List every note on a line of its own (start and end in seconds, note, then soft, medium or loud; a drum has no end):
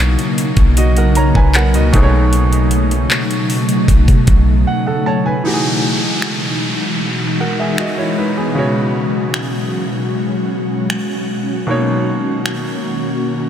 0.00 0.17 B1 loud
0.00 1.89 B2 medium
0.00 5.40 B2 medium
0.00 5.40 C#3 medium
0.00 1.91 F#3 medium
0.00 1.90 A#3 medium
0.00 1.91 A#3 medium
0.00 1.91 D#4 medium
0.00 5.40 D#4 medium
0.00 1.95 E4 medium
0.00 0.75 C#5 medium
0.00 closed hi-hat medium
0.19 closed hi-hat soft
0.38 closed hi-hat medium
0.57 1.32 B1 loud
0.57 kick loud
0.57 closed hi-hat soft
0.77 0.96 F#4 medium
0.77 0.96 D#5 medium
0.77 closed hi-hat medium
0.97 1.16 A#4 medium
0.97 1.15 F#5 medium
0.97 closed hi-hat medium
1.15 1.35 C#5 medium
1.15 1.35 A#5 medium
1.15 closed hi-hat medium
1.35 1.76 B1 loud
1.35 1.55 B4 medium
1.35 1.54 G#5 medium
1.35 kick medium
1.54 1.74 A#4 medium
1.54 1.74 F#5 medium
1.54 clap loud
1.54 closed hi-hat medium
1.74 1.93 C#2 loud
1.74 2.12 F#4 medium
1.74 2.12 D#5 medium
1.74 closed hi-hat soft
1.92 3.07 B1 medium
1.92 5.01 B2 medium
1.92 5.41 F#3 medium
1.92 5.01 A3 medium
1.92 5.41 A3 medium
1.92 5.02 D#4 medium
1.92 4.24 G#4 medium
1.92 2.02 C5 medium
1.92 kick loud
1.92 closed hi-hat medium
2.03 4.28 C#5 medium
2.33 closed hi-hat medium
2.53 closed hi-hat soft
2.71 closed hi-hat medium
2.91 closed hi-hat soft
3.11 clap loud
3.11 closed hi-hat medium
3.31 closed hi-hat soft
3.50 open hi-hat soft
3.69 closed hi-hat soft
3.88 4.07 B1 loud
3.88 kick loud
3.88 closed hi-hat medium
4.08 4.27 B2 loud
4.08 kick medium
4.08 closed hi-hat soft
4.27 4.65 B1 loud
4.27 kick loud
4.27 closed hi-hat medium
4.67 4.85 F#5 medium
4.87 5.05 A4 medium
4.87 5.05 F#5 medium
5.06 5.25 C#5 medium
5.06 5.25 A5 medium
5.26 5.63 B4 medium
5.26 5.62 G#5 medium
5.44 13.49 B2 medium
5.44 8.52 E3 medium
5.44 8.53 E3 medium
5.44 11.64 G#3 medium
5.44 8.53 D#4 medium
5.44 7.36 D#4 medium
5.44 13.49 F#4 medium
5.44 7.36 F#4 medium
5.44 5.52 G4 medium
5.44 downlifter medium
5.54 7.40 G#4 medium
6.22 finger snap loud
7.40 7.59 A#4 soft
7.40 7.58 F#5 medium
7.60 7.78 G#4 medium
7.60 7.78 E5 medium
7.78 7.97 F#4 medium
7.78 7.97 D#5 medium
7.78 finger snap loud
7.98 8.17 E4 medium
7.98 8.16 C#5 medium
8.18 8.36 D#4 medium
8.18 8.36 B4 medium
8.38 8.55 B3 medium
8.38 8.74 G#4 medium
8.55 11.63 C#3 medium
8.55 11.65 F#3 medium
8.55 11.64 B3 medium
8.55 13.49 C#4 medium
8.55 11.65 F#4 medium
8.55 11.65 C#5 medium
9.34 finger snap loud
10.90 finger snap loud
11.67 13.49 B2 medium
11.67 13.49 D#3 medium
11.67 13.49 A#3 medium
11.67 13.49 D#4 medium
11.67 13.49 C#5 medium
12.46 finger snap loud